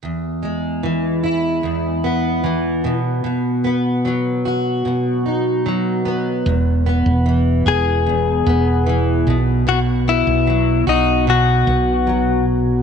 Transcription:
<<
  \new Staff \with { instrumentName = "Clean electric guitar" } { \time 4/4 \key e \major \tempo 4 = 75 r1 | r1 | r4. gis'2~ gis'8 | fis'8 e'4 dis'8 fis'4. r8 | }
  \new Staff \with { instrumentName = "Steel-string acoustic guitar" } { \clef bass \time 4/4 \key e \major e,8 gis8 e8 e'8 e,8 b8 e8 b,8 | b,8 b8 fis8 fis'8 b,8 dis'8 fis8 b8 | e,8 b8 e8 gis'8 e,8 b8 e8 b,8 | b,8 b8 fis8 fis'8 b,8 b8 fis4 | }
  \new Staff \with { instrumentName = "Fretless electric bass" } { \clef bass \time 4/4 \key e \major r1 | r1 | e,,8. e,,8. e,,4 e,,4 b,,8~ | b,,8. b,,8. b,,4 b,,4. | }
>>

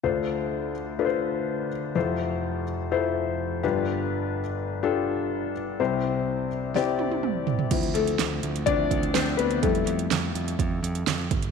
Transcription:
<<
  \new Staff \with { instrumentName = "Grand piano" } { \time 4/4 \key d \dorian \tempo 4 = 125 <d' f' a' c''>4. r8 <d' f' a' b' c''>4. r8 | <e' f' a' c''>4. r8 <e' f' a' c''>4. <d' f' g' b'>8~ | <d' f' g' b'>4 r4 <d' f' g' a'>4. r8 | <c' e' g' c''>4. r8 <c' e' g' d''>4. r8 |
r8 <a a'>4. <d' d''>4 <c' c''>8 <b b'>8 | a'2 r2 | }
  \new Staff \with { instrumentName = "Grand piano" } { \clef bass \time 4/4 \key d \dorian <d, d>1 | <f,, f,>2.~ <f,, f,>8 <g,, g,>8~ | <g,, g,>2.~ <g,, g,>8 r8 | <c, c>1 |
<f c' e'>8 r4. <f c' e'>8 r4. | <g a e'>4. r2 r8 | }
  \new Staff \with { instrumentName = "Picked electric bass" } { \clef bass \time 4/4 \key d \dorian r1 | r1 | r1 | r1 |
d,8 d,8 d,8 d,8 d,8 d,8 d,8 d,8 | f,8 f,8 f,8 f,8 f,8 f,8 f,8 g,,8 | }
  \new DrumStaff \with { instrumentName = "Drums" } \drummode { \time 4/4 r4 r4 r4 r4 | r4 r4 r4 r4 | r4 r4 r4 r4 | r4 r4 sn8 tommh16 tommh16 toml8 tomfh16 tomfh16 |
<cymc hh bd>16 hh16 hh16 hh16 <hc hh sn>8 hh16 hh16 <hh bd>8 <hh bd>16 hh16 <hc hh sn>8 hh16 hh16 | <hh bd>16 hh16 hh16 hh16 <hc hh sn>8 hh16 hh16 <hh bd>8 hh16 hh16 <hc hh sn>8 <hh bd>16 hh16 | }
>>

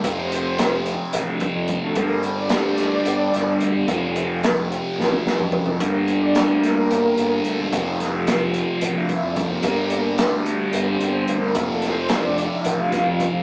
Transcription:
<<
  \new Staff \with { instrumentName = "String machine" } { \time 7/8 \key f \mixolydian \tempo 4 = 109 c''4. r4. a'8 | bes'16 c''16 d''8 c''16 d''2~ d''16~ | d''16 r2 r8. a'8 | bes'16 c''16 d''8 c''16 bes'2~ bes'16~ |
bes'16 r4 r16 c''16 d''16 e''16 f''16 e''16 d''16 c''16 bes'16~ | bes'16 d''16 bes'16 d''8 r8. c''4 bes'8 | a'8 c''8 d''8 e''8 f''4 r8 | }
  \new Staff \with { instrumentName = "Distorted electric guitar" } { \clef bass \time 7/8 \key f \mixolydian <f, c f>2.~ <f, c f>8 | <g, d g>2.~ <g, d g>8 | <f, c f>2.~ <f, c f>8 | <g, d g>2.~ <g, d g>8 |
<f, c f>2.~ <f, c f>8 | <g, d g>2.~ <g, d g>8 | <f, c f>2.~ <f, c f>8 | }
  \new Staff \with { instrumentName = "Fingered electric bass" } { \clef bass \time 7/8 \key f \mixolydian f,,4~ f,,16 f,,8 r16 a,,16 d,16 r16 f,8 d,16 | g,,4~ g,,16 d,8. g,,8 g,,8 d,16 g,,16 | f,,4~ f,,16 f,,8 r16 a,,16 d,16 r16 f,8 f,16 | g,,4~ g,,16 d,8. g,,8 g,,8 d,16 e,,16 |
f,,4~ f,,16 f,,8 r16 a,,16 d,16 r16 f,8 fis,,16 | g,,4~ g,,16 d,8. g,,8 g,,8 d,16 d,16 | f,,4~ f,,16 f,,8 r16 a,,16 d,16 r16 f,8 f,16 | }
  \new DrumStaff \with { instrumentName = "Drums" } \drummode { \time 7/8 <hh bd>8 hh8 <hh sn>8 hh8 hh8 <hh bd>8 <hh bd>8 | <hh bd>8 hh8 <hh sn>8 <hh sn>8 hh8 <hh sn>8 hh8 | <hh bd>8 hh8 <hh sn>8 hh8 sn16 tommh16 sn16 toml16 tomfh16 tomfh16 | <hh bd>8 hh8 <hh sn>8 <hh sn>8 hh8 hh8 hh8 |
<hh bd>8 <hh sn>8 <hh sn>8 hh8 hh8 <hh bd>8 <hh bd>8 | <hh bd>8 hh8 <hh sn>8 hh8 hh8 hh8 hh8 | <hh bd>8 <hh sn>8 <hh sn>8 hh8 hh8 <hh bd sn>8 <hh bd>8 | }
>>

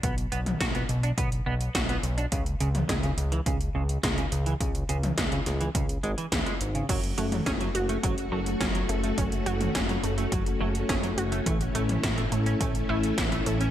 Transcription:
<<
  \new Staff \with { instrumentName = "String machine" } { \time 4/4 \key fis \minor \tempo 4 = 105 << { r1 | r1 | r1 | <a fis'>1~ |
<a fis'>1 | <a e'>1 | } \\ { r1 | r1 | r1 | cis'1~ |
cis'1~ | cis'1 | } >> }
  \new Staff \with { instrumentName = "Synth arpeggio sound" } { \time 4/4 \key fis \minor r1 | r1 | r1 | fis8 a8 cis'8 fis'8 fis8 a8 fis8 a8 |
cis'8 fis'8 fis8 a8 fis8 a8 cis'8 fis'8 | e8 a8 e8 a8 cis'8 e'8 e8 a8 | }
  \new Staff \with { instrumentName = "Clean electric guitar" } { \clef bass \time 4/4 \key fis \minor b16 r16 b16 r16 fis'16 b16 r16 d'16 b16 r16 b16 r16 fis'16 b16 r16 d'16 | cis16 r16 cis16 r16 gis16 cis16 r16 e16 cis16 r16 cis16 r16 gis16 cis16 r16 e16 | cis16 r16 cis16 r16 gis16 cis16 r16 e16 cis16 r16 gis16 e16 e16 gis16 r16 cis16 | fis16 r16 fis16 r16 cis'16 fis16 r16 a16 fis16 r16 fis16 r16 cis'16 fis16 r16 a16 |
fis16 r16 fis16 r16 cis'16 fis16 r16 a16 fis16 r16 fis16 r16 cis'16 fis16 r16 a16 | a16 r16 a16 r16 e'16 a16 r16 cis'16 a16 r16 a16 r16 e'16 a16 r16 cis'16 | }
  \new Staff \with { instrumentName = "Analog synth bass" } { \clef bass \time 4/4 \key fis \minor b,,8 b,,8 b,,8 b,,8 b,,8 b,,8 b,,8 b,,8 | cis,8 cis,8 cis,8 cis,8 cis,8 cis,8 cis,8 cis,8 | cis,8 cis,8 cis,8 cis,8 cis,8 gis,,8 cis,8 gis,,8 | fis,,8 fis,,8 fis,,8 fis,,8 fis,,8 fis,,8 fis,,8 fis,,8 |
fis,,8 fis,,8 fis,,8 fis,,8 fis,,8 fis,,8 fis,,8 fis,,8 | a,,8 a,,8 a,,8 a,,8 a,,8 a,,8 a,,8 a,,8 | }
  \new DrumStaff \with { instrumentName = "Drums" } \drummode { \time 4/4 <hh bd>16 hh16 hh16 <hh toml>16 <hh bd sn>16 hh16 hh16 hh16 <hh bd>16 hh8 hh16 <hh bd sn>16 hh16 hh16 hh16 | <hh bd>16 hh16 hh16 <hh toml>16 <hh bd sn>16 hh16 hh16 hh16 <hh bd>16 hh8 hh16 <hh bd sn>16 hh16 hh16 hh16 | <hh bd>16 hh16 hh16 <hh toml>16 <hh bd sn>16 hh16 <hh sn>16 hh16 <hh bd>16 hh16 hh16 hh16 <hh bd sn>16 hh16 hh16 hh16 | <cymc hh bd>16 hh16 hh16 <hh toml>16 <hh bd sn>16 hh16 hh16 hh16 <hh bd>16 hh8 hh16 <hh bd sn>16 hh16 hh16 hh16 |
<hh bd>16 hh16 hh16 <hh toml>16 <hh bd sn>16 hh16 hh16 hh16 <hh bd>16 hh8 hh16 <hh bd sn>16 hh16 hh16 hh16 | <hh bd>16 hh16 hh16 <hh toml>16 <hh bd sn>16 hh16 hh16 hh16 <hh bd>16 hh8 hh16 <hh bd sn>16 hh16 hh16 hh16 | }
>>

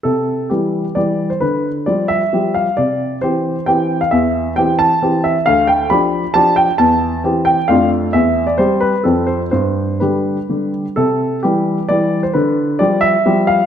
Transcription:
<<
  \new Staff \with { instrumentName = "Grand piano" } { \time 3/4 \key c \major \tempo 4 = 133 a'4 g'4 d''8. c''16 | b'4 d''8 e''4 f''8 | d''4 c''4 g''8. f''16 | e''4 g''8 a''4 e''8 |
f''8 g''8 b''4 a''8 g''8 | a''4. g''8 f''8 r8 | e''8. d''16 c''8 b'8 a'8 c''8 | c''4 b'4. r8 |
a'4 g'4 d''8. c''16 | b'4 d''8 e''4 f''8 | }
  \new Staff \with { instrumentName = "Grand piano" } { \clef bass \time 3/4 \key c \major c4 <e g>4 <e g g'>4 | d4 <f g g'>4 <f g g'>4 | c4 <e c' g'>4 <e c' g'>4 | e,4 <e c' g'>4 <e c' g'>4 |
d,4 <f d' g'>4 <f d' g'>4 | e,4 <e c' g'>4 <f, a d' f'>4 | e,4 <g c' g'>4 <f, f c'>4 | g,4 <d g g'>4 <d g g'>4 |
c4 <e g>4 <e g g'>4 | d4 <f g g'>4 <f g g'>4 | }
>>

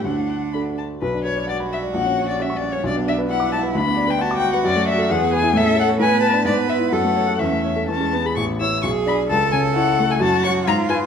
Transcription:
<<
  \new Staff \with { instrumentName = "Violin" } { \time 2/4 \key d \major \tempo 4 = 132 fis''4 b''8 a''8 | \key b \minor b'8 cis''8 d''8 e''8 | fis''8. d''16 \tuplet 3/2 { e''8 d''8 cis''8 } | d''8 e''8 fis''8 a''8 |
b''8. g''16 \tuplet 3/2 { a''8 g''8 fis''8 } | \key a \major d''8 e''8 fis''8 gis''8 | e''8 fis''8 gis''8 a''8 | d''8 e''8 fis''4 |
e''4 a''8. b''16 | cis'''8 e'''8 cis'''8 b''8 | a''8 gis''8 fis''8. gis''16 | a''8 cis'''8 bes''8 aes''8 | }
  \new Staff \with { instrumentName = "Cello" } { \time 2/4 \key d \major d'4. r8 | \key b \minor r4 fis'4~ | fis'4 cis'4 | d'4 e'4 |
d'4 fis'4~ | \key a \major fis'4 gis'4 | a'4 b'4 | b'4 a'4 |
cis'4 cis'8 b8 | r4 gis'4 | a'2 | fis'4 f'4 | }
  \new Staff \with { instrumentName = "Grand piano" } { \time 2/4 \key d \major d,4 <d' fis' a'>4 | \key b \minor b,,16 d'16 b'16 d''16 fis''16 b''16 fis''16 d''16 | ais,,16 cis'16 cis''16 fis'16 fis''16 cis'''16 fis''16 cis''16 | b,,16 b16 d''16 b'16 fis''16 d'''16 fis''16 b'16 |
d,16 b16 d''16 b'16 fis''16 d'''16 fis''16 b'16 | \key a \major fis,16 a16 d''16 a'16 e,16 b16 b'16 e'16 | a,16 cis'16 a'16 cis''16 a,16 b16 b'16 d'16 | gis,16 b16 b'16 e'16 fis,16 a16 cis''16 a'16 |
e,16 a16 cis''16 a'16 e,16 gis16 b'16 gis'16 | a,,8 <e' cis''>8 b,,8 <d' d''>8 | cis,8 cis8 <e' cis''>8 a8 | fis,8 <fis' cis''>8 aes,8 <f' ces''>8 | }
>>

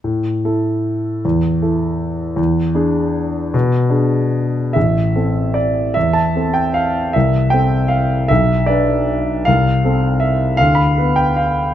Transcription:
\new Staff \with { instrumentName = "Grand piano" } { \time 3/4 \key a \minor \tempo 4 = 153 << { r2. | r2. | r2. | r2. |
e''2 d''4 | e''8 a''4 g''8 f''4 | e''4 g''4 f''4 | e''4 d''2 |
f''2 e''4 | f''8 b''4 g''8 f''4 | } \\ { a,4 <e' a'>2 | e,4 <e' a'>2 | e,4 <d' gis'>2 | b,4 <d' gis'>2 |
a,,4 <c' a'>2 | e,4 <c' a'>2 | c,4 <c' a'>2 | b,,4 <d' b'>2 |
c,4 <c' a'>2 | d,4 <b b'>2 | } >> }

